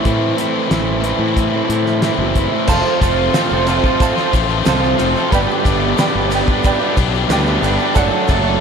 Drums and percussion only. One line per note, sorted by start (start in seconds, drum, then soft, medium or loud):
0.05 kick loud
0.05 closed hi-hat medium
0.38 closed hi-hat medium
0.71 snare loud
0.71 closed hi-hat medium
1.04 closed hi-hat medium
1.37 kick loud
1.37 closed hi-hat medium
1.70 closed hi-hat medium
1.86 snare soft
2.02 snare loud
2.02 closed hi-hat medium
2.35 kick medium
2.35 closed hi-hat medium
2.67 kick loud
2.67 crash loud
2.67 shaker loud
2.85 shaker soft
3.02 kick medium
3.02 ride medium
3.02 shaker medium
3.34 snare loud
3.34 ride medium
3.34 shaker loud
3.67 ride medium
3.67 shaker medium
3.84 kick medium
3.84 shaker soft
4.00 kick loud
4.00 ride medium
4.00 shaker loud
4.17 snare soft
4.33 kick medium
4.33 ride medium
4.33 shaker medium
4.49 shaker soft
4.66 snare loud
4.66 ride loud
4.66 shaker loud
4.84 shaker soft
4.99 ride medium
4.99 shaker medium
5.16 shaker soft
5.32 kick loud
5.32 ride medium
5.32 shaker loud
5.50 shaker soft
5.65 kick medium
5.65 ride medium
5.65 shaker medium
5.98 snare loud
5.98 ride medium
5.98 shaker loud
6.31 ride medium
6.31 shaker medium
6.47 kick medium
6.47 shaker soft
6.64 kick loud
6.64 ride loud
6.64 shaker medium
6.97 kick medium
6.97 ride medium
6.97 shaker medium
7.14 shaker soft
7.30 snare loud
7.30 ride loud
7.30 shaker medium
7.46 shaker soft
7.63 ride medium
7.63 shaker medium
7.79 shaker soft
7.95 kick loud
7.95 ride loud
7.95 shaker medium
8.28 kick medium
8.28 ride medium
8.28 shaker medium